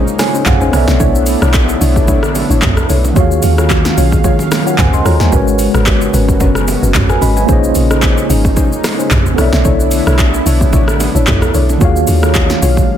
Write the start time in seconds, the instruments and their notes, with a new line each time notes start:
Already playing: analog synth pad C#3 G#3 A#3 C#4 D#4, tine electric piano A#3 F4 G#4 C5 C#5 D#5
0.08 shaker
0.19 tine electric piano F4 C#5 G#5, cross-stick, snare, open hi-hat, high bongo, low bongo, shaker
0.34 synth stab C#4 D#4 G#4 C5, shaker
0.46 log drum bass A#1, tine electric piano G#4 F5 F#5, kick, clap, mid tom, high bongo, low conga, shaker
0.61 synth stab C#4 D#4 G#4 C5, tine electric piano C5 G#5, shaker
0.69 log drum bass B1, analog synth pad D3 A3 B3 D4 E4, tine electric piano B3 A4 C#5, cross-stick
0.73 tine electric piano D5 E5, open hi-hat, shaker
0.88 log drum bass B1, snare, low bongo, shaker
1.00 log drum bass B1, synth stab D4 E4 A4 C#5, kick, low conga, shaker
1.15 shaker
1.26 open hi-hat, shaker
1.42 log drum bass B1, synth stab D4 E4 A4 C#5, cross-stick, shaker
1.53 kick, clap, high bongo, shaker
1.69 shaker
1.81 log drum bass B1, synth stab D4 E4 A4 C#5, open hi-hat, shaker
1.96 kick, high bongo, shaker
2.08 log drum bass A1, synth stab D4 E4 A4 C#5, kick, low conga, shaker
2.23 cross-stick, shaker
2.35 open hi-hat, high bongo, low bongo, shaker
2.50 log drum bass A1, synth stab D4 E4 A4 C#5, shaker
2.62 log drum bass B1, kick, clap, mid tom, high bongo, low conga, shaker
2.77 cross-stick, shaker
2.89 log drum bass B1, synth stab D4 E4 A4 C#5, open hi-hat, shaker
3.04 low bongo, shaker
3.13 log drum bass D#2, tine electric piano D#3 A#3 F#4, analog synth pad D#3 F#3 G#3 C#4 F5, synth stab F4 F#4 G#4 C#5, kick, low conga, shaker
3.17 tine electric piano G#4 C#5 F5
3.31 shaker
3.43 log drum bass D#2, open hi-hat, low bongo, shaker
3.58 synth stab F4 F#4 G#4 C#5, cross-stick, shaker
3.70 kick, clap, high bongo, shaker
3.85 snare, shaker
3.97 log drum bass B1, synth stab F4 F#4 G#4 C#5, open hi-hat, shaker
4.12 kick, high bongo, shaker
4.24 synth stab F4 F#4 G#4 C#5, kick, low conga, shaker
4.39 low bongo, shaker
4.52 cross-stick, snare, open hi-hat, high bongo, low bongo, shaker
4.66 synth stab F4 F#4 G#4 C#5, tine electric piano A#4 F#5, shaker
4.78 log drum bass C#2, tine electric piano C5 G#5, kick, clap, mid tom, high bongo, low conga, shaker
4.93 tine electric piano D#5 C6, shaker
5.05 log drum bass D#2, synth stab F4 F#4 G#4 C#5, tine electric piano C#5 A#5, cross-stick, open hi-hat, shaker
5.20 log drum bass D#2, tine electric piano C5 G#5, snare, low bongo, shaker
5.29 log drum bass G#1, analog synth pad C#3 B3 C#4 F#4, tine electric piano G#3 F#4 A#4, synth stab C#4 F#4 A#4 B4, kick, shaker
5.33 tine electric piano B4 C#5, low conga
5.48 shaker
5.59 open hi-hat, shaker
5.74 log drum bass G#1, synth stab C#4 F#4 A#4 B4, cross-stick, shaker
5.86 kick, clap, high bongo, shaker
6.01 shaker
6.13 log drum bass G#1, synth stab C#4 F#4 A#4 B4, open hi-hat, shaker
6.28 kick, high bongo, shaker
6.40 log drum bass F#1, synth stab C#4 F#4 A#4 B4, kick, low conga, shaker
6.55 cross-stick, shaker
6.68 open hi-hat, high bongo, low bongo, shaker
6.82 log drum bass F#1, synth stab C#4 F#4 A#4 B4, shaker
6.94 log drum bass G#1, kick, clap, mid tom, high bongo, low conga, shaker
7.09 tine electric piano B4 G#5, cross-stick, shaker
7.21 log drum bass G#1, synth stab C#4 F#4 A#4 B4, tine electric piano D#5 B5, open hi-hat, shaker
7.37 tine electric piano B4 G#5, low bongo, shaker
7.45 log drum bass A#1, tine electric piano A#3 F4 G#4, analog synth pad A#3 D#4, synth stab C#4 D#4 G#4 C5, kick, shaker
7.49 tine electric piano C5 C#5 D#5, low conga
7.64 shaker
7.75 log drum bass A#1, open hi-hat, shaker
7.90 synth stab C#4 D#4 G#4 C5, cross-stick, shaker
8.02 kick, clap, high bongo, shaker
8.18 shaker
8.29 log drum bass G#1, synth stab C#4 D#4 G#4 C5, open hi-hat, shaker
8.45 kick, high bongo, shaker
8.56 synth stab C#4 D#4 G#4 C5, kick, low conga, shaker
8.73 shaker
8.84 cross-stick, snare, open hi-hat, high bongo, low bongo, shaker
8.98 synth stab C#4 D#4 G#4 C5, shaker
9.11 log drum bass A#1, kick, clap, mid tom, high bongo, low conga, shaker
9.26 shaker
9.34 log drum bass B1, analog synth pad D3 A3 B3 D4 E4, tine electric piano B3 A4 C#5, synth stab D4 E4 A4, cross-stick
9.38 synth stab C#5, tine electric piano D5 E5, open hi-hat, shaker
9.53 log drum bass B1, snare, low bongo, shaker
9.65 log drum bass B1, synth stab D4 E4 A4 C#5, kick, low conga, shaker
9.80 shaker
9.91 open hi-hat, shaker
10.07 log drum bass B1, synth stab D4 E4 A4 C#5, cross-stick, shaker
10.18 kick, clap, high bongo, shaker
10.34 shaker
10.46 log drum bass B1, synth stab D4 E4 A4 C#5, open hi-hat, shaker
10.61 kick, high bongo, shaker
10.73 log drum bass A1, synth stab D4 E4 A4 C#5, kick, low conga, shaker
10.88 cross-stick, shaker
11.00 open hi-hat, high bongo, low bongo, shaker
11.15 log drum bass A1, synth stab D4 E4 A4 C#5, shaker
11.27 log drum bass B1, kick, clap, mid tom, high bongo, low conga, shaker
11.42 cross-stick, shaker
11.54 log drum bass B1, synth stab D4 E4 A4 C#5, open hi-hat, shaker
11.69 low bongo, shaker
11.78 log drum bass D#2, tine electric piano D#3 A#3 F#4, analog synth pad D#3 F#3 G#3 F5, synth stab F4 F#4 G#4 C#5, kick, shaker
11.82 tine electric piano G#4 C#5 F5, low conga
11.96 shaker
12.07 log drum bass D#2, open hi-hat, low bongo, shaker
12.23 synth stab F4 F#4 G#4 C#5, cross-stick, shaker
12.34 kick, clap, high bongo, shaker
12.50 snare, shaker
12.62 log drum bass B1, synth stab F4 F#4 G#4 C#5, open hi-hat, shaker
12.77 kick, high bongo, shaker